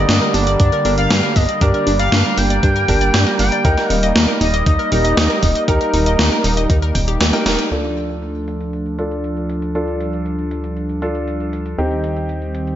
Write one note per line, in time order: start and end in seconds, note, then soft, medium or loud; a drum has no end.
0.00 0.82 D3 loud
0.00 3.61 D3 medium
0.00 7.67 G3 medium
0.00 7.68 A#3 medium
0.00 0.82 G4 loud
0.00 0.82 A#4 loud
0.00 0.36 D#5 loud
0.09 0.20 G2 medium
0.09 0.19 D4 medium
0.09 snare loud
0.09 closed hi-hat soft
0.21 0.34 A#4 medium
0.21 closed hi-hat soft
0.34 0.57 G1 loud
0.34 0.40 D4 medium
0.34 0.59 D5 medium
0.34 open hi-hat medium
0.47 0.57 D5 medium
0.47 closed hi-hat soft
0.60 0.71 G2 medium
0.60 0.70 D4 medium
0.60 0.95 D5 loud
0.60 kick loud
0.60 closed hi-hat medium
0.72 0.85 A#4 medium
0.72 closed hi-hat soft
0.85 1.08 G1 medium
0.85 0.91 D4 medium
0.85 1.58 D4 medium
0.85 1.58 G4 medium
0.85 1.58 A#4 loud
0.85 open hi-hat medium
0.98 1.08 D5 medium
0.98 1.38 F5 loud
0.98 closed hi-hat soft
1.10 1.22 G2 loud
1.10 1.21 D4 medium
1.10 snare loud
1.10 closed hi-hat medium
1.23 1.35 A#4 medium
1.23 closed hi-hat soft
1.36 1.47 G1 loud
1.36 1.42 D4 medium
1.36 1.63 D#5 loud
1.36 kick loud
1.36 open hi-hat medium
1.49 1.59 D5 medium
1.49 closed hi-hat medium
1.61 1.73 G2 loud
1.61 1.71 D4 medium
1.61 2.85 D4 loud
1.61 2.85 G4 medium
1.61 2.85 A#4 loud
1.61 1.99 D5 loud
1.61 kick loud
1.61 closed hi-hat medium
1.74 1.86 A#4 medium
1.74 closed hi-hat soft
1.87 2.09 G1 loud
1.87 1.93 D4 medium
1.87 open hi-hat medium
1.99 2.09 D5 medium
1.99 2.39 F5 loud
1.99 closed hi-hat soft
2.12 2.23 G2 medium
2.12 2.22 D4 medium
2.12 snare loud
2.12 closed hi-hat medium
2.25 2.37 A#4 medium
2.25 closed hi-hat soft
2.37 2.60 G1 loud
2.37 2.44 D4 medium
2.37 3.39 G5 loud
2.37 open hi-hat medium
2.50 2.60 D5 medium
2.50 closed hi-hat soft
2.63 2.86 G2 medium
2.63 2.73 D4 medium
2.63 kick loud
2.63 closed hi-hat soft
2.76 2.88 A#4 medium
2.76 closed hi-hat soft
2.88 3.11 G1 loud
2.88 2.94 D4 medium
2.88 3.62 D4 medium
2.88 3.62 G4 medium
2.88 3.62 A#4 loud
2.88 kick medium
2.88 open hi-hat medium
3.01 3.11 D5 medium
3.01 closed hi-hat medium
3.14 3.25 G2 loud
3.14 3.24 D4 medium
3.14 snare loud
3.14 closed hi-hat medium
3.27 3.39 A#4 medium
3.27 snare soft
3.27 closed hi-hat soft
3.39 3.51 G1 medium
3.39 3.45 D4 medium
3.39 3.92 G5 loud
3.39 open hi-hat medium
3.52 3.62 D5 medium
3.52 closed hi-hat medium
3.65 3.76 D#2 loud
3.65 3.75 D#4 medium
3.65 7.68 D#4 medium
3.65 4.89 D#4 loud
3.65 4.89 G4 loud
3.65 4.89 A#4 loud
3.65 kick loud
3.65 closed hi-hat medium
3.77 3.90 A#4 medium
3.77 snare soft
3.77 closed hi-hat soft
3.90 4.13 D#1 loud
3.90 3.96 D#4 medium
3.90 4.12 F5 loud
3.90 open hi-hat medium
4.03 4.13 D#5 medium
4.03 closed hi-hat medium
4.16 4.27 D#2 medium
4.16 4.26 D#4 medium
4.16 snare loud
4.16 closed hi-hat medium
4.28 4.40 A#4 medium
4.28 closed hi-hat soft
4.41 4.63 D#1 loud
4.41 4.47 D#4 medium
4.41 4.65 D#5 loud
4.41 open hi-hat medium
4.54 4.64 D#5 medium
4.54 closed hi-hat medium
4.66 4.78 D#2 medium
4.66 4.76 D#4 medium
4.66 5.64 D#5 loud
4.66 kick loud
4.66 closed hi-hat medium
4.79 4.91 A#4 medium
4.79 closed hi-hat soft
4.92 5.14 D#1 medium
4.92 4.98 D#4 medium
4.92 5.65 D#4 medium
4.92 5.65 G4 medium
4.92 5.65 A#4 loud
4.92 open hi-hat medium
5.04 5.15 D#5 medium
5.04 closed hi-hat medium
5.17 5.29 D#2 loud
5.17 5.27 D#4 medium
5.17 snare loud
5.17 closed hi-hat medium
5.30 5.42 A#4 medium
5.30 closed hi-hat soft
5.43 5.54 D#1 loud
5.43 5.49 D#4 medium
5.43 kick loud
5.43 open hi-hat medium
5.55 5.65 D#5 medium
5.55 closed hi-hat medium
5.68 5.79 D#2 loud
5.68 5.78 D#4 medium
5.68 6.92 D#4 loud
5.68 6.92 G4 medium
5.68 7.42 A#4 loud
5.68 6.92 A#4 loud
5.68 kick loud
5.68 closed hi-hat medium
5.81 5.93 A#4 medium
5.81 closed hi-hat soft
5.93 6.16 D#1 loud
5.93 6.00 D#4 medium
5.93 open hi-hat medium
6.06 6.16 D#5 medium
6.06 closed hi-hat medium
6.19 6.30 D#2 medium
6.19 6.29 D#4 medium
6.19 snare loud
6.19 closed hi-hat medium
6.32 6.44 A#4 medium
6.32 closed hi-hat soft
6.44 6.67 D#1 loud
6.44 6.50 D#4 medium
6.44 open hi-hat medium
6.57 6.67 D#5 medium
6.57 closed hi-hat medium
6.70 6.92 D#2 medium
6.70 6.80 D#4 medium
6.70 kick loud
6.70 closed hi-hat medium
6.82 6.94 A#4 medium
6.82 closed hi-hat soft
6.95 7.18 D#1 loud
6.95 7.05 G5 medium
6.95 kick medium
6.95 open hi-hat medium
7.08 7.18 G4 medium
7.08 closed hi-hat medium
7.20 7.32 D#2 loud
7.20 7.27 G4 medium
7.20 snare loud
7.20 closed hi-hat medium
7.33 7.43 D#4 loud
7.33 7.43 G4 medium
7.33 7.43 A#4 loud
7.33 7.43 G5 loud
7.33 snare soft
7.33 closed hi-hat soft
7.46 7.57 D#1 medium
7.46 7.58 D#4 loud
7.46 7.68 D#4 loud
7.46 7.68 G4 medium
7.46 7.68 A#4 loud
7.46 snare loud
7.46 open hi-hat medium
7.58 7.71 G5 medium
7.58 closed hi-hat medium
7.71 11.76 D2 medium
7.71 11.74 F3 medium
7.71 9.73 A3 medium
7.71 8.95 D4 medium
7.71 11.74 D4 medium
7.71 8.95 F4 medium
7.71 8.95 A4 loud
7.71 closed hi-hat medium
7.97 closed hi-hat medium
8.10 closed hi-hat soft
8.22 closed hi-hat medium
8.35 closed hi-hat soft
8.48 closed hi-hat loud
8.61 closed hi-hat soft
8.73 closed hi-hat soft
8.86 closed hi-hat soft
8.99 9.72 D4 medium
8.99 9.72 F4 medium
8.99 9.72 A4 medium
8.99 closed hi-hat medium
9.11 closed hi-hat soft
9.24 closed hi-hat medium
9.37 closed hi-hat soft
9.50 closed hi-hat medium
9.62 closed hi-hat medium
9.75 12.76 G3 medium
9.75 10.99 D4 medium
9.75 10.99 F4 medium
9.75 10.99 A4 loud
9.75 closed hi-hat medium
9.88 closed hi-hat soft
10.01 closed hi-hat medium
10.13 closed hi-hat soft
10.26 closed hi-hat soft
10.39 closed hi-hat soft
10.51 closed hi-hat medium
10.64 closed hi-hat medium
10.77 closed hi-hat soft
10.89 closed hi-hat soft
11.02 11.75 D4 medium
11.02 11.75 F4 medium
11.02 11.75 A4 medium
11.02 closed hi-hat medium
11.15 closed hi-hat soft
11.28 closed hi-hat medium
11.40 closed hi-hat soft
11.53 closed hi-hat medium
11.66 closed hi-hat medium
11.78 12.76 D#2 medium
11.78 12.76 D#3 medium
11.78 12.76 C4 medium
11.78 12.76 D#4 medium
11.78 12.76 G4 loud
11.78 closed hi-hat soft
11.91 closed hi-hat soft
12.04 closed hi-hat medium
12.16 closed hi-hat soft
12.29 closed hi-hat soft
12.42 closed hi-hat soft
12.55 closed hi-hat medium
12.67 closed hi-hat soft